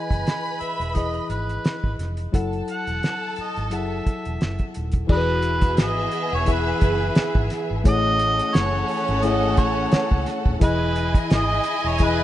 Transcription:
Already playing: tine electric piano E3 E4 G#4 D#5, violin section B4 B5, harmonica G#5
0.11 fingered electric bass F#1, kick, closed hi-hat
0.27 snare, closed hi-hat
0.45 closed hi-hat
0.61 harmonica E5, muted fingered electric bass stroke, closed hi-hat
0.80 fingered electric bass E1, closed hi-hat
0.94 tine electric piano E3 E4 G#4 D#5, harmonica D#5, kick, snare, closed hi-hat
1.14 closed hi-hat
1.30 fingered electric bass G#1, harmonica B4, closed hi-hat
1.49 closed hi-hat
1.65 snare, closed hi-hat
1.84 fingered electric bass G#1, kick
1.99 fingered electric bass F1, snare, closed hi-hat
2.17 closed hi-hat
2.32 fingered electric bass F#1, tine electric piano F#3 E4 A4 F#5, violin section A4 A5, kick, closed hi-hat
2.53 closed hi-hat
2.68 harmonica F#5, closed hi-hat
2.87 fingered electric bass E1, closed hi-hat
3.03 snare, closed hi-hat
3.36 muted fingered electric bass stroke, closed hi-hat
3.41 harmonica D#5
3.56 fingered electric bass G#1, closed hi-hat
3.70 fingered electric bass F#1, tine electric piano F#3 E4 G#4 F#5, closed hi-hat
3.75 tine electric piano A4, harmonica E5
4.07 kick, closed hi-hat
4.25 fingered electric bass E1, closed hi-hat
4.41 fingered electric bass F#1, snare, closed hi-hat
4.59 kick, closed hi-hat
4.74 fingered electric bass D#1, closed hi-hat
4.92 kick, closed hi-hat
5.07 fingered electric bass E1, tine electric piano E3 E4 G#4 D5, string section E3 E4 G#4, violin section B3 G#4 E5, vibraphone F#4, kick, crash
5.12 harmonica B4
5.17 tine electric piano B4
5.42 closed hi-hat
5.61 kick, closed hi-hat
5.77 fingered electric bass G#1, snare, closed hi-hat
5.82 harmonica D#5
6.12 closed hi-hat
6.33 fingered electric bass E1, harmonica C#5
6.44 tine electric piano E3 E4 G#4 E5, kick, closed hi-hat
6.52 harmonica B4
6.80 fingered electric bass F#1, vibraphone G#4, kick, closed hi-hat
7.15 muted fingered electric bass stroke, snare, closed hi-hat
7.35 fingered electric bass G#1, kick
7.50 snare, closed hi-hat
7.71 fingered electric bass G#1
7.84 fingered electric bass A1, string section E3 A3 C#4, tine electric piano A3 E4 G#4 C#5, violin section C#4 A4 F#5, kick, closed hi-hat
7.88 harmonica D#5
8.19 closed hi-hat
8.39 closed hi-hat
8.54 fingered electric bass F#1, harmonica C#5, snare, closed hi-hat
8.88 open hi-hat
9.08 fingered electric bass G#1, closed hi-hat
9.22 tine electric piano A3 E4 G#4 C#5, harmonica D#5, snare, closed hi-hat
9.56 fingered electric bass A1, vibraphone C#5, harmonica C#5, kick, closed hi-hat
9.92 muted fingered electric bass stroke, snare, closed hi-hat
10.11 fingered electric bass C#2, kick
10.26 snare, closed hi-hat
10.46 fingered electric bass D#1, kick
10.59 fingered electric bass E1, tine electric piano E3 E4 G#4 D#5, string section E3 G#4 D#5, violin section E4 D#5 G#5, kick, closed hi-hat
10.63 harmonica B4
10.96 closed hi-hat
11.15 kick, closed hi-hat
11.30 fingered electric bass G#1, snare, closed hi-hat
11.35 harmonica D#5
11.64 closed hi-hat
11.84 fingered electric bass E1, harmonica C#5
11.99 tine electric piano E3 E4 G#4 D#5, kick, snare, closed hi-hat
12.04 harmonica B4

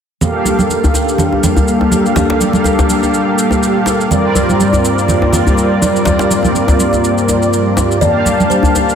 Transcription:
0.21 analog synth pad G3 A#3 D4 A4, analog polysynth A#3 G4 A4 F5, low conga, shaker
0.45 high conga, djembe tone, shaker
0.59 high conga, shaker
0.69 high conga, shaker
0.84 djembe bass, shaker
0.94 djembe tone, shaker
1.08 shaker
1.18 low conga, shaker
1.32 djembe tone
1.43 low conga, shaker
1.57 djembe bass, shaker
1.68 shaker
1.81 djembe tone
1.91 high conga, shaker
2.06 shaker
2.16 djembe slap, djembe tone, low conga, shaker
2.30 djembe slap
2.40 high conga, shaker
2.53 high conga, shaker
2.64 djembe tone, high conga, shaker
2.79 djembe slap, djembe bass, shaker
2.90 high conga, shaker
3.03 djembe tone, shaker
3.14 shaker
3.39 shaker
3.51 djembe tone, shaker
3.63 shaker
3.86 djembe slap, djembe tone, shaker
4.01 shaker
4.11 analog synth pad G2 A#3 F4 C5 D5, analog polysynth G3 C4 F4 A#4 D5, low conga, shaker
4.35 djembe tone, high conga, shaker
4.49 high conga, shaker
4.60 high conga, shaker
4.73 djembe tone, djembe bass, shaker
4.85 shaker
4.98 shaker
5.08 low conga, shaker
5.22 djembe tone
5.33 low conga, shaker
5.47 djembe bass, shaker
5.57 djembe tone, shaker
5.82 high conga, shaker
5.96 shaker
6.05 djembe slap, djembe tone, low conga, shaker
6.19 djembe slap, shaker
6.31 high conga, shaker
6.43 djembe tone, high conga, shaker
6.55 high conga, shaker
6.68 djembe slap, djembe bass, shaker
6.79 high conga, shaker
6.93 djembe tone, shaker
7.04 shaker
7.18 shaker
7.28 djembe tone, shaker
7.42 shaker
7.53 shaker
7.77 djembe slap, djembe tone, shaker
7.91 shaker
8.01 analog synth pad G3 D4 A5, analog polysynth A#3 G4 F5 A5, kalimba D5, low conga, shaker
8.25 djembe tone, high conga, shaker
8.40 high conga, shaker
8.50 kalimba C5, high conga, shaker
8.63 djembe bass, shaker
8.75 djembe tone, shaker
8.89 shaker

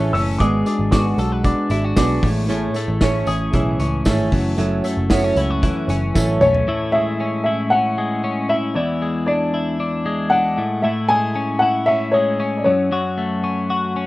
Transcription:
Already playing: picked electric bass A1, clean electric guitar A2 E3 A3 C#4 G#4, steel-string acoustic guitar A3 C#4 E4 G#4 C#5, upright piano F#6
0.13 picked electric bass F#1, clean electric guitar C#4, steel-string acoustic guitar E4 C#5, upright piano E6, hi-hat pedal, open hi-hat
0.38 picked electric bass G#1, steel-string acoustic guitar G#3 B3 F#4 G#4 D5, clean electric guitar G#3, upright piano D6, kick, hi-hat pedal, open hi-hat
0.66 clean electric guitar D4, steel-string acoustic guitar F#4 G#4 D5, hi-hat pedal, open hi-hat, tambourine
0.79 picked electric bass G#1
0.91 steel-string acoustic guitar G#3 B3 F#4 G#4 D5, clean electric guitar F#4, upright piano D6, kick, snare, hi-hat pedal, open hi-hat, tambourine
1.18 picked electric bass B1, steel-string acoustic guitar F#4 G#4 D5, clean electric guitar A4, hi-hat pedal, open hi-hat, tambourine
1.32 clean electric guitar B4
1.43 steel-string acoustic guitar B3 F#4 G#4 D5, clean electric guitar D4, kick, hi-hat pedal, open hi-hat, tambourine
1.69 picked electric bass G#1, clean electric guitar E4, steel-string acoustic guitar F#4 G#4 D5, hi-hat pedal, open hi-hat, tambourine
1.84 clean electric guitar F#4
1.96 picked electric bass B1, steel-string acoustic guitar G#3 B3 F#4 G#4 D5, clean electric guitar D4, kick, snare, hi-hat pedal, open hi-hat, tambourine
2.22 picked electric bass A1, clean electric guitar A2, steel-string acoustic guitar E4 G#4 C#5, kick, hi-hat pedal, open hi-hat
2.48 clean electric guitar A2, steel-string acoustic guitar A3 C#4 E4 G#4 C#5, hi-hat pedal, open hi-hat, tambourine
2.74 clean electric guitar A3, steel-string acoustic guitar E4 G#4 C#5, hi-hat pedal, open hi-hat, tambourine
2.88 picked electric bass A1
3.01 steel-string acoustic guitar A3 C#4 E4 G#4 C#5, clean electric guitar C#4, kick, snare, hi-hat pedal, open hi-hat, tambourine
3.27 picked electric bass A1, steel-string acoustic guitar E4 G#4 C#5, clean electric guitar G#4, hi-hat pedal, open hi-hat, tambourine
3.52 picked electric bass B1, clean electric guitar E3, steel-string acoustic guitar C#4 E4 G#4 C#5, kick, hi-hat pedal, open hi-hat, tambourine
3.79 picked electric bass C#2, clean electric guitar C#4, steel-string acoustic guitar E4 G#4 C#5, hi-hat pedal, open hi-hat, tambourine
4.05 picked electric bass G#1, steel-string acoustic guitar A3 C#4 E4 G#4 C#5, clean electric guitar A3, kick, snare, hi-hat pedal, open hi-hat, tambourine
4.31 picked electric bass F#1, clean electric guitar F#2, steel-string acoustic guitar A4 C#5, kick, hi-hat pedal, open hi-hat
4.57 picked electric bass F#1, clean electric guitar F#2, steel-string acoustic guitar F#3 C#4 E4 A4 C#5, hi-hat pedal, open hi-hat, tambourine
4.84 clean electric guitar A3, steel-string acoustic guitar E4 A4 C#5, hi-hat pedal, open hi-hat, tambourine
4.97 picked electric bass F#1
5.10 steel-string acoustic guitar F#3 C#4 E4 A4 C#5, clean electric guitar B3, kick, snare, hi-hat pedal, open hi-hat, tambourine
5.24 clean electric guitar C#4
5.36 picked electric bass C#2, clean electric guitar E4, steel-string acoustic guitar E4 A4 C#5, hi-hat pedal, open hi-hat, tambourine
5.50 clean electric guitar F#4
5.63 clean electric guitar E3, steel-string acoustic guitar C#4 E4 A4 C#5, kick, hi-hat pedal, open hi-hat, tambourine
5.88 picked electric bass F#1, clean electric guitar C#4, steel-string acoustic guitar E4 A4 C#5, hi-hat pedal, open hi-hat, tambourine
6.15 picked electric bass A1, steel-string acoustic guitar F#3 C#4 E4 A4 C#5, clean electric guitar A3, kick, snare, tambourine
6.40 picked electric bass B1, clean electric guitar C#4, steel-string acoustic guitar E4 C#5, upright piano C#5, mid tom, tambourine
6.54 floor tom
6.68 clean electric guitar A2 E4
6.92 clean electric guitar G#3, upright piano E5
7.20 clean electric guitar C#4
7.44 clean electric guitar E4, upright piano E5
7.70 clean electric guitar C#4, upright piano F#5
7.98 clean electric guitar G#3
8.24 clean electric guitar C#4
8.49 clean electric guitar E4, upright piano E5
8.75 clean electric guitar E2 E4, upright piano D5
9.02 clean electric guitar G#3
9.26 clean electric guitar D4, upright piano D5
9.54 clean electric guitar E4
9.80 clean electric guitar D4
10.06 clean electric guitar G#3
10.30 clean electric guitar D4, upright piano F#5
10.58 clean electric guitar A2
10.82 clean electric guitar A2 E4, upright piano E5
11.09 clean electric guitar G#3, upright piano G#5
11.36 clean electric guitar C#4
11.59 clean electric guitar E4, upright piano F#5
11.86 clean electric guitar C#4, upright piano E5
12.12 clean electric guitar G#3, upright piano C#5
12.40 clean electric guitar C#4
12.57 upright piano D5
12.64 clean electric guitar F#2, upright piano C#5
12.92 clean electric guitar F#2 F#4
13.18 clean electric guitar A3
13.44 clean electric guitar C#4
13.70 clean electric guitar F#4
13.96 clean electric guitar C#4

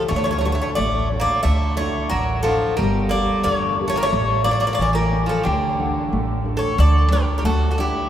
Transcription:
0.08 upright bass D2, nylon-string guitar D3, bouzouki A3 C#5
0.16 bouzouki A3 C#5
0.24 bouzouki A3 C#5
0.31 bouzouki A3 C#5
0.39 bouzouki A3 C#5
0.45 bouzouki A3 C#5, nylon-string guitar D4 F#4 A4
0.52 bouzouki A3 C#5
0.62 bouzouki A3 C#5
0.75 upright bass A1, bouzouki A3 D5
0.79 nylon-string guitar A3
1.12 nylon-string guitar D4 F#4 A4
1.20 bouzouki A#3 D5
1.43 upright bass D2, nylon-string guitar D3, bouzouki A3 E5
1.77 bouzouki A3 C#5, nylon-string guitar D4 E4 F#4
2.10 upright bass A1, bouzouki F#3 A#4
2.43 bouzouki F3 A4, nylon-string guitar D4
2.47 nylon-string guitar E4 F#5
2.77 upright bass G1, bouzouki G3 A#4, nylon-string guitar G3
3.09 bouzouki A#3 D5, nylon-string guitar G4 A4
3.43 upright bass E2, nylon-string guitar D3, bouzouki A3 C#5
3.79 nylon-string guitar G4 A4 A#4
3.88 bouzouki A3 C#5
3.96 bouzouki G3 A#4
4.03 bouzouki A3 C#5
4.13 upright bass A1, nylon-string guitar A3
4.44 bouzouki A#3 D5, nylon-string guitar E4 A4 C#5
4.51 bouzouki A#3 D5
4.60 bouzouki A#3 D5
4.67 bouzouki A#3 D5
4.73 bouzouki A#3 D5
4.79 upright bass A1, nylon-string guitar E3, bouzouki A#3 D5
4.93 bouzouki G3 A#4
5.12 nylon-string guitar E4 A4 C#5
5.26 bouzouki F3 A4
5.43 upright bass D2, bouzouki D3 G4, nylon-string guitar D3
5.79 nylon-string guitar D4 A4 F#5
6.13 upright bass A1, nylon-string guitar A3
6.44 nylon-string guitar D4 F#4 A4
6.57 bouzouki A4 C#5
6.78 upright bass D2, nylon-string guitar D3, bouzouki A4 D5
7.11 nylon-string guitar D4 F#4 A4, bouzouki G4 A#4
7.38 bouzouki G4 A#4
7.44 upright bass D2, nylon-string guitar A3, bouzouki F#4 A4
7.71 bouzouki F#4 A4
7.78 nylon-string guitar D4 A4 F#5, bouzouki E4 G4

